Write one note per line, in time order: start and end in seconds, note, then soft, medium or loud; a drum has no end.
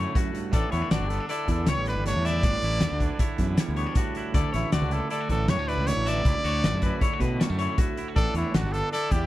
0.00 0.16 D2 medium
0.00 0.51 A2 medium
0.00 0.90 D3 medium
0.00 0.54 A3 medium
0.00 0.52 E4 medium
0.00 0.52 F#4 medium
0.00 0.16 C#5 medium
0.15 0.34 F#2 medium
0.15 0.54 F#4 medium
0.15 kick loud
0.15 closed hi-hat loud
0.34 0.54 G2 medium
0.34 closed hi-hat medium
0.52 0.62 A1 medium
0.52 0.91 A2 medium
0.52 0.72 D4 medium
0.52 0.73 A4 medium
0.52 0.71 D5 medium
0.52 kick loud
0.52 closed hi-hat loud
0.71 0.81 E2 medium
0.71 0.82 B3 medium
0.71 0.92 E4 medium
0.71 0.91 C#5 medium
0.71 snare soft
0.71 closed hi-hat medium
0.82 1.10 D4 soft
0.91 1.00 A1 medium
0.91 2.80 D3 medium
0.91 1.10 F#4 medium
0.91 1.28 D5 medium
0.91 snare loud
0.91 closed hi-hat medium
1.00 1.18 G1 medium
1.08 1.20 B3 medium
1.08 1.27 A4 medium
1.08 snare soft
1.08 closed hi-hat medium
1.20 1.86 D4 medium
1.28 2.26 E4 medium
1.28 1.47 A4 medium
1.28 1.68 D5 medium
1.28 closed hi-hat medium
1.48 1.65 E2 medium
1.48 2.06 E2 medium
1.48 1.71 A4 medium
1.48 kick medium
1.48 closed hi-hat medium
1.66 1.77 C#2 loud
1.66 3.59 G3 medium
1.66 1.87 C#5 medium
1.66 1.88 C#5 loud
1.66 snare loud
1.66 closed hi-hat medium
1.77 1.94 A1 medium
1.86 2.07 D4 medium
1.86 2.05 B4 medium
1.86 2.25 D5 medium
1.86 closed hi-hat medium
1.96 2.13 G1 medium
2.06 2.43 A2 medium
2.06 2.45 D4 medium
2.06 2.27 C#5 loud
2.06 snare soft
2.06 closed hi-hat medium
2.16 2.41 E2 medium
2.25 2.64 E4 medium
2.25 3.40 D5 loud
2.25 2.44 E5 medium
2.25 snare soft
2.25 closed hi-hat medium
2.43 2.52 G1 medium
2.43 2.82 A2 medium
2.43 3.01 D4 medium
2.43 2.63 D5 medium
2.43 kick loud
2.43 closed hi-hat loud
2.62 2.80 A1 medium
2.62 3.20 E4 medium
2.62 2.82 C#5 medium
2.62 closed hi-hat medium
2.80 2.90 E2 medium
2.80 4.72 D3 medium
2.80 3.01 D5 medium
2.80 snare loud
2.80 closed hi-hat loud
2.91 3.09 D2 medium
3.00 3.78 D4 medium
3.00 3.20 B4 medium
3.00 kick medium
3.00 closed hi-hat medium
3.19 4.16 E4 medium
3.19 3.40 C#5 medium
3.19 kick loud
3.19 closed hi-hat medium
3.38 3.96 E2 medium
3.38 3.56 F#2 medium
3.38 3.58 B4 medium
3.38 kick medium
3.38 closed hi-hat medium
3.57 4.35 G3 medium
3.57 3.76 C#5 medium
3.57 snare loud
3.57 closed hi-hat loud
3.68 3.85 D2 medium
3.76 3.87 B3 medium
3.76 3.96 C#5 medium
3.76 closed hi-hat medium
3.87 3.96 D4 soft
3.95 4.35 A2 medium
3.95 4.34 D4 medium
3.95 4.35 F#4 medium
3.95 kick loud
3.95 closed hi-hat loud
4.15 4.34 E4 medium
4.15 closed hi-hat medium
4.34 5.85 D2 medium
4.34 4.43 D2 medium
4.34 4.92 E4 medium
4.34 4.52 A4 medium
4.34 4.52 D5 medium
4.34 kick loud
4.34 closed hi-hat loud
4.53 4.62 A1 medium
4.53 5.50 A3 medium
4.53 4.72 E4 medium
4.53 4.72 C#5 medium
4.53 snare soft
4.53 closed hi-hat medium
4.72 4.81 D2 medium
4.72 6.62 D3 medium
4.72 4.94 F#4 medium
4.72 5.10 D5 medium
4.72 snare loud
4.72 closed hi-hat medium
4.82 4.99 C#2 loud
4.91 5.11 E4 medium
4.91 5.10 A4 medium
4.91 closed hi-hat medium
5.10 5.21 E4 medium
5.10 5.28 A4 medium
5.10 5.49 D5 medium
5.10 closed hi-hat medium
5.21 6.05 F#4 medium
5.29 5.47 A1 medium
5.29 6.26 A2 medium
5.29 5.51 A4 medium
5.29 kick medium
5.29 closed hi-hat medium
5.48 5.57 F#2 medium
5.48 5.59 G3 medium
5.48 5.70 C#5 medium
5.48 5.68 C#5 medium
5.48 snare loud
5.48 closed hi-hat medium
5.57 5.75 D2 medium
5.57 6.25 A3 medium
5.68 5.87 E4 medium
5.68 5.88 B4 medium
5.68 6.06 D5 medium
5.68 snare soft
5.68 closed hi-hat medium
5.77 5.94 C#2 medium
5.86 6.25 D2 medium
5.86 6.26 E4 soft
5.86 6.10 C#5 loud
5.86 snare soft
5.86 closed hi-hat loud
5.97 6.22 A1 medium
6.06 6.23 F#4 medium
6.06 7.22 D5 loud
6.06 6.26 E5 medium
6.06 snare soft
6.06 closed hi-hat medium
6.25 6.34 C#2 medium
6.25 7.78 D2 medium
6.25 6.85 E4 medium
6.25 6.45 D5 loud
6.25 kick loud
6.25 closed hi-hat loud
6.44 6.61 D2 medium
6.44 7.01 F#4 medium
6.44 6.64 C#5 medium
6.44 closed hi-hat medium
6.64 6.73 A1 medium
6.64 8.53 D3 medium
6.64 6.82 D5 medium
6.64 snare loud
6.64 closed hi-hat medium
6.74 6.90 F#2 medium
6.82 7.03 E4 medium
6.82 7.01 B4 medium
6.82 kick medium
6.82 closed hi-hat medium
7.01 7.13 E4 medium
7.01 7.21 C#5 medium
7.01 kick loud
7.01 closed hi-hat medium
7.13 7.98 F#4 medium
7.20 8.16 A2 medium
7.20 7.38 B2 loud
7.20 7.40 B4 medium
7.20 kick medium
7.20 closed hi-hat medium
7.40 7.50 G3 medium
7.40 7.57 C#5 loud
7.40 snare loud
7.40 closed hi-hat medium
7.50 7.67 F#2 medium
7.50 8.16 A3 medium
7.59 7.80 E4 medium
7.59 7.78 C#5 medium
7.59 closed hi-hat medium
7.78 8.17 D2 medium
7.78 7.98 E4 medium
7.78 8.16 F#4 medium
7.78 kick loud
7.78 closed hi-hat loud
7.97 8.08 E4 medium
7.97 closed hi-hat medium
8.08 8.17 F#4 medium
8.16 8.25 A1 medium
8.16 8.55 A2 medium
8.16 8.36 D4 medium
8.16 8.34 A4 loud
8.16 8.36 D5 loud
8.16 kick loud
8.16 closed hi-hat medium
8.34 8.43 E2 medium
8.34 8.75 D4 medium
8.34 8.56 E4 medium
8.34 8.55 C#5 medium
8.34 closed hi-hat medium
8.54 8.63 A1 medium
8.54 9.26 D3 medium
8.54 8.74 F#4 medium
8.54 8.92 D5 medium
8.54 snare loud
8.54 closed hi-hat medium
8.63 8.81 G1 loud
8.72 9.26 D4 medium
8.72 8.92 A4 loud
8.72 snare soft
8.72 closed hi-hat medium
8.92 9.26 E4 medium
8.92 9.13 A4 loud
8.92 9.26 D5 medium
8.92 closed hi-hat medium
9.11 9.26 E2 medium
9.11 9.26 G4 medium
9.11 kick medium
9.11 closed hi-hat medium